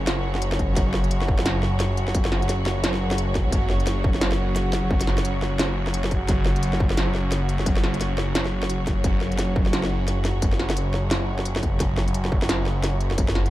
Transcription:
0.00 0.76 F#1 medium
0.00 13.50 C#3 medium
0.00 13.50 F#3 medium
0.00 13.50 F#4 medium
0.00 13.50 C#5 medium
0.07 snare loud
0.07 snare medium
0.07 closed hi-hat medium
0.35 snare medium
0.42 closed hi-hat medium
0.52 snare medium
0.59 kick medium
0.59 closed hi-hat soft
0.76 2.06 F#1 loud
0.76 kick loud
0.76 snare medium
0.76 closed hi-hat medium
0.94 snare medium
1.04 closed hi-hat soft
1.11 closed hi-hat medium
1.21 snare medium
1.28 kick loud
1.39 snare medium
1.46 snare loud
1.46 closed hi-hat medium
1.63 snare medium
1.80 snare medium
1.80 closed hi-hat medium
1.97 closed hi-hat soft
2.08 2.14 F#1 medium
2.08 snare medium
2.15 2.31 F#1 loud
2.15 kick loud
2.15 closed hi-hat medium
2.25 snare medium
2.32 3.47 F#1 medium
2.32 snare medium
2.42 closed hi-hat soft
2.49 snare medium
2.49 closed hi-hat medium
2.66 snare medium
2.84 snare loud
2.84 closed hi-hat medium
2.94 snare medium
3.11 snare medium
3.11 closed hi-hat soft
3.18 closed hi-hat medium
3.35 kick medium
3.35 snare medium
3.35 closed hi-hat soft
3.46 3.52 C#2 medium
3.52 4.82 F#1 loud
3.52 kick loud
3.52 closed hi-hat medium
3.70 snare medium
3.80 closed hi-hat soft
3.87 snare medium
3.87 closed hi-hat medium
4.04 kick loud
4.14 snare medium
4.21 snare loud
4.21 closed hi-hat medium
4.32 snare medium
4.56 snare medium
4.56 closed hi-hat medium
4.73 snare medium
4.73 closed hi-hat soft
4.84 4.90 F#1 medium
4.91 5.07 F#1 loud
4.91 kick loud
5.01 snare medium
5.01 closed hi-hat medium
5.07 6.28 F#1 medium
5.07 snare medium
5.18 snare medium
5.18 closed hi-hat soft
5.25 closed hi-hat medium
5.42 snare medium
5.59 snare loud
5.59 snare medium
5.59 closed hi-hat medium
5.87 snare medium
5.94 closed hi-hat medium
6.04 snare medium
6.11 kick medium
6.11 closed hi-hat soft
6.28 7.58 F#1 loud
6.28 kick loud
6.28 snare medium
6.28 closed hi-hat medium
6.46 snare medium
6.56 closed hi-hat soft
6.63 closed hi-hat medium
6.73 snare medium
6.80 kick loud
6.90 snare medium
6.97 snare loud
6.97 closed hi-hat medium
7.15 snare medium
7.32 snare medium
7.32 closed hi-hat medium
7.49 closed hi-hat soft
7.59 7.66 F#1 medium
7.59 snare medium
7.66 7.83 F#1 loud
7.66 kick loud
7.66 closed hi-hat medium
7.77 snare medium
7.84 9.03 F#1 medium
7.84 snare medium
7.94 closed hi-hat soft
8.01 snare medium
8.01 closed hi-hat medium
8.18 snare medium
8.35 snare loud
8.35 closed hi-hat medium
8.45 snare medium
8.63 snare medium
8.70 closed hi-hat medium
8.87 kick medium
8.87 snare soft
8.87 closed hi-hat soft
9.04 10.34 F#1 loud
9.04 kick loud
9.04 closed hi-hat medium
9.21 snare medium
9.32 closed hi-hat soft
9.39 snare medium
9.39 closed hi-hat medium
9.56 kick loud
9.66 snare medium
9.73 snare loud
9.73 closed hi-hat medium
9.83 snare medium
10.08 snare soft
10.08 closed hi-hat medium
10.25 snare medium
10.25 closed hi-hat soft
10.36 10.42 F#1 medium
10.42 10.58 F#1 loud
10.42 kick loud
10.42 closed hi-hat medium
10.53 snare medium
10.59 11.79 F#1 medium
10.59 snare medium
10.70 snare medium
10.70 closed hi-hat soft
10.77 closed hi-hat medium
10.94 snare medium
11.11 snare loud
11.11 snare medium
11.11 closed hi-hat medium
11.39 snare medium
11.45 closed hi-hat medium
11.56 snare medium
11.63 kick medium
11.63 closed hi-hat soft
11.80 13.10 F#1 loud
11.80 kick loud
11.80 snare medium
11.80 closed hi-hat medium
11.97 snare medium
12.08 closed hi-hat soft
12.14 closed hi-hat medium
12.25 snare medium
12.32 kick loud
12.42 snare medium
12.49 snare loud
12.49 closed hi-hat medium
12.66 snare medium
12.84 snare medium
12.84 closed hi-hat medium
13.01 closed hi-hat soft
13.11 13.17 F#1 medium
13.11 snare medium
13.18 13.34 F#1 loud
13.18 kick loud
13.18 closed hi-hat medium
13.28 snare medium
13.35 13.50 F#1 medium
13.35 snare medium
13.46 closed hi-hat soft

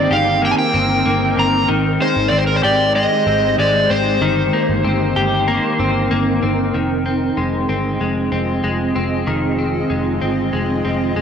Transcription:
0.00 1.68 D#3 loud
0.00 0.41 A#3 medium
0.00 0.74 C4 medium
0.00 1.65 C4 medium
0.00 4.17 D#4 medium
0.00 1.66 A#4 medium
0.00 0.14 D5 medium
0.11 0.53 G1 medium
0.11 2.03 G4 medium
0.11 0.41 F5 medium
0.42 1.04 A#3 medium
0.42 0.51 G5 medium
0.51 0.58 G#5 medium
0.58 1.39 G5 medium
0.74 1.02 G1 medium
0.74 1.37 C4 medium
1.05 1.34 G1 loud
1.05 1.75 A#3 medium
1.37 1.65 G1 loud
1.37 2.32 C4 medium
1.37 1.68 A#5 medium
1.68 1.97 G#1 loud
1.68 4.21 D#3 medium
1.68 4.19 G#3 medium
1.68 4.19 G4 medium
1.68 4.19 C5 medium
2.00 2.94 G#3 medium
2.00 2.29 C5 medium
2.16 2.30 G#1 loud
2.28 2.60 G#1 loud
2.28 3.26 C4 medium
2.28 2.37 D5 medium
2.38 2.46 C5 medium
2.47 2.55 A#4 medium
2.56 2.64 C5 medium
2.63 3.05 G#1 medium
2.63 5.16 G4 medium
2.63 2.95 D5 loud
2.95 3.57 G#3 medium
2.95 3.59 D#5 loud
3.27 3.55 G#1 loud
3.27 3.89 C4 medium
3.58 3.86 G#1 loud
3.58 4.28 G#3 medium
3.58 3.91 D5 medium
3.90 4.18 G#1 medium
3.90 4.56 C4 medium
3.90 6.07 C5 medium
4.21 4.49 G1 loud
4.21 6.74 D#3 medium
4.21 6.72 C4 medium
4.21 6.72 D#4 medium
4.21 6.72 A#4 medium
4.53 5.46 A#3 medium
4.69 4.83 G1 loud
4.84 5.13 G1 medium
4.84 5.79 C4 medium
5.16 5.58 G1 medium
5.16 6.80 G4 medium
5.48 6.10 A#3 medium
5.80 6.07 G1 loud
5.80 6.42 C4 medium
6.11 6.39 G1 loud
6.11 6.80 A#3 medium
6.43 6.71 G1 loud
6.43 7.05 C4 medium
6.74 7.30 F1 loud
6.74 9.27 D#3 medium
6.74 11.21 C4 medium
6.74 11.21 F4 medium
6.74 11.21 G#4 medium
6.74 11.21 D#5 medium
7.06 7.69 C4 soft
7.37 7.65 F1 medium
7.37 8.00 G#3 soft
7.69 7.97 G1 medium
7.69 8.32 C4 medium
8.01 8.29 F1 medium
8.01 8.63 G#3 medium
8.32 8.60 F1 medium
8.32 8.95 C4 medium
8.64 8.92 F1 medium
8.64 9.89 G#3 medium
8.96 9.23 F1 medium
8.96 9.58 C4 soft
9.27 9.83 F1 loud
9.27 11.21 D#3 medium
9.59 10.21 C4 soft
9.90 10.18 F1 medium
9.90 10.52 G#3 soft
10.21 10.50 G1 medium
10.21 10.84 C4 medium
10.53 10.81 F1 medium
10.53 11.15 G#3 medium
10.85 11.13 F1 medium
10.85 11.21 C4 soft
11.16 11.21 F1 medium
11.16 11.21 G#3 medium

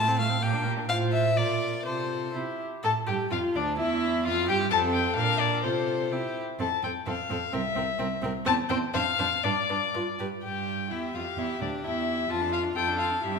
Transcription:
0.00 0.37 A2 medium
0.00 0.19 A5 medium
0.08 0.20 C4 medium
0.08 0.21 A4 soft
0.18 0.31 A3 medium
0.18 0.32 F4 medium
0.18 0.44 F5 medium
0.29 0.41 C4 medium
0.29 0.42 A4 soft
0.41 0.83 A#2 medium
0.41 0.55 A#3 medium
0.41 0.56 G4 soft
0.41 0.66 G5 medium
0.53 0.66 D4 medium
0.53 0.68 A#4 soft
0.65 0.78 A#3 medium
0.65 0.80 G4 medium
0.77 0.87 D4 soft
0.77 0.89 A#4 soft
0.88 1.38 A2 medium
0.88 1.33 F4 medium
0.88 1.40 C5 medium
0.88 0.97 F5 medium
1.13 1.38 E5 medium
1.36 1.85 A#2 medium
1.36 1.84 F4 soft
1.36 1.87 A#4 soft
1.36 1.85 D5 medium
1.85 2.34 C3 medium
1.85 2.33 F4 soft
1.85 2.37 A4 medium
1.85 2.34 C5 medium
2.34 2.43 C3 soft
2.34 2.63 E4 soft
2.34 2.64 G4 soft
2.83 2.92 A2 medium
2.83 2.91 A4 medium
2.83 2.92 A4 medium
2.83 2.92 A5 medium
3.07 3.16 G2 medium
3.07 3.15 G4 medium
3.07 3.31 G4 medium
3.07 3.16 G5 medium
3.31 3.40 F2 medium
3.31 3.39 F4 medium
3.31 3.57 F4 medium
3.31 3.40 F5 medium
3.55 3.80 D2 medium
3.55 3.77 D4 medium
3.55 3.78 D4 medium
3.55 3.64 D5 medium
3.78 4.27 E2 medium
3.78 4.24 E4 medium
3.78 4.27 E4 medium
3.78 4.25 E5 medium
4.25 4.50 F2 medium
4.25 4.48 F4 medium
4.25 4.48 F5 medium
4.49 4.71 G2 medium
4.49 4.71 G4 medium
4.49 4.57 G4 medium
4.49 4.57 G5 loud
4.71 5.14 F2 medium
4.71 5.15 C4 medium
4.71 5.19 A4 medium
4.71 4.79 A5 loud
4.93 5.16 G5 medium
5.16 5.65 A#2 medium
5.16 5.65 D4 medium
5.16 5.65 A#4 medium
5.16 5.41 F5 loud
5.39 5.62 D5 medium
5.63 6.11 C3 medium
5.63 6.14 F4 medium
5.63 6.13 A4 medium
5.63 6.34 C5 medium
6.12 6.20 C3 medium
6.12 6.40 E4 medium
6.12 6.40 G4 soft
6.59 6.67 F2 medium
6.59 6.67 C4 medium
6.59 6.68 A4 soft
6.59 6.82 A5 medium
6.83 6.91 F2 medium
6.83 6.91 C4 medium
6.83 6.92 A4 soft
6.83 6.92 G5 medium
7.06 7.15 F2 medium
7.06 7.14 C4 medium
7.06 7.14 A4 medium
7.06 7.55 F5 medium
7.29 7.39 F2 medium
7.29 7.38 C4 medium
7.29 7.39 A4 soft
7.52 7.62 C2 medium
7.52 7.60 C4 medium
7.52 7.61 A#4 medium
7.52 8.23 E5 medium
7.75 7.84 C2 medium
7.75 7.83 C4 medium
7.75 7.85 A#4 soft
7.99 8.07 C2 medium
7.99 8.07 C4 medium
7.99 8.07 A#4 medium
8.22 8.31 C2 medium
8.22 8.30 C4 medium
8.22 8.32 A#4 medium
8.45 8.55 E2 medium
8.45 8.53 C4 medium
8.45 8.54 C5 medium
8.45 8.54 A5 loud
8.69 8.78 E2 medium
8.69 8.77 C4 medium
8.69 8.78 C5 medium
8.69 8.77 G5 medium
8.94 9.03 F2 medium
8.94 9.02 D4 medium
8.94 9.02 C5 medium
8.94 9.45 F5 loud
9.19 9.27 F2 medium
9.19 9.27 D4 medium
9.19 9.27 C5 medium
9.43 9.53 G2 medium
9.43 9.52 D4 medium
9.43 9.52 B4 medium
9.43 10.19 D5 medium
9.69 9.78 G2 medium
9.69 9.77 D4 medium
9.69 9.77 B4 soft
9.94 10.03 G2 medium
9.94 10.03 F4 medium
9.94 10.02 B4 soft
10.19 10.28 G2 medium
10.19 10.27 G4 medium
10.19 10.28 B4 soft
10.43 10.93 G2 medium
10.43 10.87 G4 soft
10.43 10.93 G5 medium
10.90 11.14 E2 medium
10.90 11.14 E4 soft
10.90 12.32 G4 soft
10.90 11.16 E5 medium
11.14 11.22 F2 medium
11.14 11.22 F4 medium
11.14 11.40 F5 medium
11.37 11.45 E2 medium
11.37 11.60 E4 medium
11.37 11.61 E5 medium
11.61 11.69 D2 medium
11.61 11.85 D4 medium
11.61 11.70 D5 medium
11.84 12.29 E2 medium
11.84 12.29 E4 medium
11.84 12.31 E5 medium
12.30 12.71 F2 medium
12.30 12.43 F4 medium
12.30 12.78 F4 medium
12.30 12.53 A5 medium
12.41 12.54 D4 soft
12.52 12.65 F4 medium
12.52 12.61 F5 medium
12.63 12.75 D4 soft
12.75 13.18 F2 medium
12.75 12.89 F4 medium
12.75 13.24 A4 medium
12.75 12.98 G5 medium
12.87 13.00 D4 medium
12.99 13.12 F4 soft
12.99 13.25 F5 medium
13.10 13.22 D4 soft
13.22 13.39 G2 medium
13.22 13.36 E4 soft
13.22 13.39 G4 soft
13.22 13.39 E5 medium
13.34 13.39 C4 soft

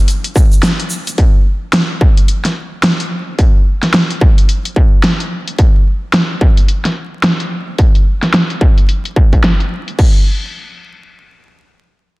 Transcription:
0.08 closed hi-hat medium
0.08 shaker soft
0.24 closed hi-hat soft
0.36 kick loud
0.36 shaker medium
0.52 shaker medium
0.63 snare loud
0.63 closed hi-hat medium
0.63 shaker soft
0.80 closed hi-hat soft
0.90 shaker loud
1.07 closed hi-hat soft
1.07 shaker medium
1.18 kick loud
1.18 closed hi-hat medium
1.73 snare loud
1.73 closed hi-hat medium
2.01 kick loud
2.17 closed hi-hat soft
2.28 closed hi-hat medium
2.45 snare soft
2.45 closed hi-hat soft
2.83 snare loud
2.83 closed hi-hat medium
3.00 closed hi-hat soft
3.39 kick loud
3.39 closed hi-hat medium
3.83 snare soft
3.83 closed hi-hat soft
3.94 snare loud
3.94 closed hi-hat medium
4.10 closed hi-hat soft
4.21 kick medium
4.38 closed hi-hat soft
4.49 closed hi-hat medium
4.65 closed hi-hat soft
4.76 kick loud
5.04 snare loud
5.04 closed hi-hat medium
5.20 closed hi-hat soft
5.48 closed hi-hat soft
5.58 kick loud
5.58 closed hi-hat medium
6.13 snare loud
6.13 closed hi-hat medium
6.41 kick medium
6.57 closed hi-hat soft
6.68 closed hi-hat medium
6.85 snare soft
6.85 closed hi-hat soft
7.24 snare loud
7.24 closed hi-hat medium
7.40 closed hi-hat soft
7.78 kick loud
7.78 closed hi-hat medium
7.95 closed hi-hat soft
8.23 snare soft
8.23 closed hi-hat soft
8.34 snare loud
8.34 closed hi-hat medium
8.50 closed hi-hat soft
8.61 kick medium
8.78 closed hi-hat soft
8.89 closed hi-hat medium
9.05 closed hi-hat soft
9.16 kick medium
9.33 kick medium
9.33 closed hi-hat soft
9.44 snare loud
9.44 closed hi-hat medium
9.60 closed hi-hat soft
9.88 closed hi-hat soft
9.99 kick loud
9.99 crash medium

